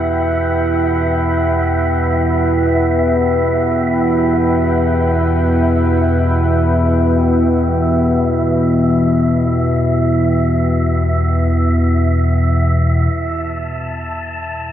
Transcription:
Already playing: E2 B2 E4 B4 E5 F#5 G5
13.13 E2 B2 A5

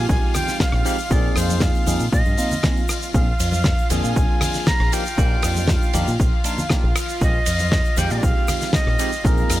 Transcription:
Already playing: F3 G#3 C4 D#4 F4 G4 F5
0.09 A#1 G#5, kick, shaker
0.34 G5, cross-stick, open hi-hat, low conga, shaker
0.48 snare, shaker
0.60 F5, kick, snare, shaker
0.72 A#1, cross-stick
0.85 F3 G#3 C4 D#4 G4, open hi-hat, shaker
0.98 shaker
1.10 A#1 F3 A#3 C4 D#4 G#4 D5, kick, shaker
1.36 F2 C5, cross-stick, open hi-hat, shaker
1.49 high conga, shaker
1.60 F5, kick, snare, shaker
1.75 shaker
1.86 F2 F3 A#3 C4 D#4 G#4, open hi-hat, low conga, shaker
2.00 A#2, shaker
2.12 A#2 D#5, kick, shaker
2.25 G2, shaker
2.37 F3 A#3 C4 D#4 F4, open hi-hat, shaker
2.51 low conga, shaker
2.63 F3 A#3 C4 D#4 G#4, kick, cross-stick, snare, shaker
2.77 shaker
2.88 cross-stick, open hi-hat, shaker
3.02 shaker
3.14 A#1 F3 A#3 C4 D4 F4 G#4 F5, kick, shaker
3.40 F2, open hi-hat, ride, shaker
3.52 high conga, shaker
3.64 kick, snare, shaker
3.78 shaker
3.90 F2 F3 A#3 C4 D4 G#4 G#5, open hi-hat, ride, low conga, shaker
4.04 A#2, shaker
4.16 A#1, kick, shaker
4.41 cross-stick, open hi-hat, ride, low conga, shaker
4.54 snare, shaker
4.56 shaker
4.67 A#5, kick, snare, shaker
4.80 A#1, cross-stick
4.92 F3 A#3 D4 D#4 G4 G5, open hi-hat, ride, shaker
5.05 shaker
5.07 shaker
5.17 A#1 F3 A#3 D4 D#4 G4, kick, shaker
5.42 F2, cross-stick, open hi-hat, ride, shaker
5.56 high conga, shaker
5.68 kick, snare, shaker
5.82 shaker
5.93 F2 F3 A#3 D4 D#4 G4, open hi-hat, ride, low conga, shaker
6.07 A#2, shaker
6.20 A#1, kick, shaker
6.44 F3 A#3 D4 D#4 F4, open hi-hat, ride, shaker
6.58 low conga, shaker
6.70 F3 A#3 D4 D#4 G4, kick, cross-stick, snare, shaker
6.84 A#1
6.95 cross-stick, open hi-hat, ride, shaker
7.09 shaker
7.21 A#1 F3 G#3 C4 D#4 G4 D#5, kick, shaker
7.46 F2, open hi-hat, ride, shaker
7.59 high conga, shaker
7.61 shaker
7.72 kick, snare, shaker
7.85 shaker
7.96 F2 F3 G#3 C4 D#4 G5, open hi-hat, ride, low conga, shaker
7.98 G4, shaker
8.10 A#2 D5 D#5, shaker
8.17 D5
8.23 A#1 F5, kick, shaker
8.48 cross-stick, open hi-hat, ride, low conga, shaker
8.61 snare, shaker
8.73 D#5, kick, snare, shaker
8.87 A#1, cross-stick
8.99 F3 G#3 C4 D#4 G4, open hi-hat, ride, shaker
9.12 shaker
9.24 A#1 F3 A#3 C4 D#4 G#4 A#4, kick, shaker
9.37 high conga, shaker
9.49 F2, cross-stick, open hi-hat, ride, shaker

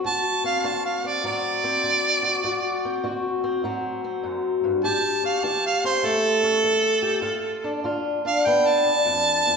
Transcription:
Already playing: F#3
0.05 D2 F#4 A5
0.44 C4 F5
0.64 D3 F#4 A5
0.85 F5
1.04 C4 D5
1.24 A2 F#3 D5
1.64 C4
1.84 D3
2.23 F#4
2.44 D2 F#4
2.85 C4
3.04 D3 F#4
3.44 C4
3.64 A2 F#3
4.04 C4
4.23 F#2
4.64 G2
4.84 A2 G4 A5
5.23 C#4 F5
5.43 E3 G4 A5
5.66 F5
5.84 C#4 C5
6.03 E2 A3 A4
6.43 C#4
6.64 E3
7.02 G4
7.21 G2 F4
7.64 D4
7.84 D3 F4
8.25 D4 F5
8.46 D3 B3 G5
8.67 A5
8.85 D4
9.06 F2
9.46 E2

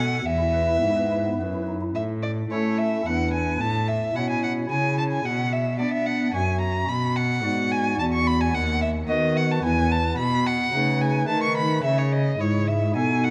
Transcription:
Already playing: B2 A4 F#5
0.10 B3
0.25 E2 E5
0.39 E4
0.53 B4
0.68 E4
0.82 G#2 B3
0.97 B4
1.11 E4
1.26 B3
1.39 F#2 B4
1.54 E4
1.68 D#4
1.82 E4
1.95 A2 E5
2.22 D5
2.51 A3 C#4 E4 A4 C#5
2.78 E5
3.05 E2 D4 E4 B4 F#5
3.33 G#5
3.60 A2 A5
3.88 E5
4.14 B2 C#4 E4 C#5 F#5
4.30 G#5
4.43 F#5
4.70 C#3 C#4 E4 C#5 G#5
4.98 A5
5.12 G#5
5.25 B2 F#5
5.53 E5
5.79 B3 D4 D5
5.94 E5
6.06 F#5
6.34 F#2 C#4 F#4 E5 G#5
6.61 A#5
6.88 B2 B5
7.16 F#5
7.43 G#2 B3 F#4 D5
7.72 G#5
7.99 E2 B3 F#4 D5 A5
8.13 C#6
8.27 B5
8.41 G#5
8.53 D#2 F#5
8.82 E5
9.08 D#3 B3 F#4 B4 D#5
9.37 F#5
9.51 A5
9.63 E2 B3 E4 B4 G#5
9.92 A5
10.18 B2 B5
10.47 F#5
10.73 C#3 A3 D#4 B4
11.01 G#5
11.28 D#3 A3 D#4 B4 A5
11.43 C#6
11.57 B5
11.83 C#3 E5
11.98 C#5
12.12 D#5
12.39 G#2 G#3 E4 G#4 C#5
12.68 E5
12.95 B2 B3 D#4 A4 G#5
13.24 F#5

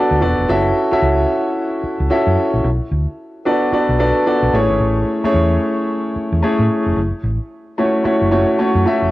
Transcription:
Already playing: B3 D4 F#4 A4 D5
0.11 D2
0.21 E1 B3 D4 F#4 A4 D5
0.38 F1
0.48 F#1 C#4 E4 F#4 A4 E5
0.91 C#4 E4 F#4 A4 E5, muted fingered electric bass stroke
1.02 C#2
1.83 muted fingered electric bass stroke
2.00 C#2
2.10 C#4 E4 F#4 A4 E5
2.27 F#2
2.54 A#1
2.64 B1
2.91 D2
3.45 B3 D4 F#4 A4 D5
3.72 B3 D4 F#4 A4 D5, muted fingered electric bass stroke
3.89 B1
3.99 B3 D4 F#4 A4 D5
4.26 B3 D4 F#4 A4 D5
4.43 B1
4.53 A1 A3 C#4 E4 G#4 C#5
4.70 G#1
4.80 A1
5.24 A3 C#4 E4 G#4 C#5, muted fingered electric bass stroke
5.34 E2
6.16 muted fingered electric bass stroke
6.32 E2
6.42 A3 C#4 E4 G#4 C#5
6.59 A2
6.86 F1
6.96 F#1
7.23 A1
7.78 A3 C#4 E4 F#4 C#5
8.04 A3 C#4 E4 F#4 C#5, muted fingered electric bass stroke
8.21 F#1
8.31 A3 C#4 E4 F#4 C#5
8.58 A3 C#4 E4 F#4 C#5
8.75 F#2
8.85 A3 C#4 E4 F#4 E5
9.02 F1

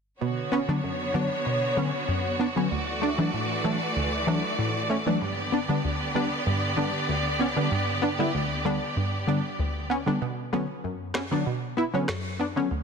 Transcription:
0.21 B2 D3 B3 F#4 C#5
0.52 B3 C#4
0.68 D3 F#3 B3 D4
0.84 F#2
1.14 D3 F#3 B3 D4
1.46 B2
1.77 D3 F#3 B3 C#4
2.08 F#2
2.39 B3 D4
2.56 D3 F#3 B3 C#4
2.71 D2 E3 A3 D5
3.02 A3 D4
3.18 E3 F#3 A3 D4
3.33 A2
3.64 E3 F#3 A3 D4
3.96 D2
4.27 E3 F#3 A3 D4
4.58 A2
4.90 A3 C#4
5.06 E3 F#3 A3 D4
5.21 G2 D3 B3 G4 D5
5.52 B3 D4
5.69 D3 G3 B3 D4
5.84 D2
6.15 D3 G3 B3 D4
6.47 G2
6.77 D3 G3 B3 D4
7.09 D2
7.39 B3 C#4
7.56 D3 G3 B3 D4
7.71 G2
8.02 B3 D4
8.19 D3 G3 B3 E4
8.35 D2
8.65 D3 G3 B3 D4
8.96 G2
9.27 D3 G3 B3 D4
9.59 D2
9.90 B3 C#4
10.06 D3 G3 B3 D4
10.22 B2
10.53 D3 F#3 B3 C#4
10.84 F#2
11.14 B3 C#4, cross-stick, snare
11.31 D3 F#3 B3 D4
11.46 B2
11.77 B3 E4
11.93 D3 F#3 B3 C#4
12.08 F#2, cross-stick, snare
12.39 B3 D4
12.56 D3 F#3 B3 C#4
12.71 D2

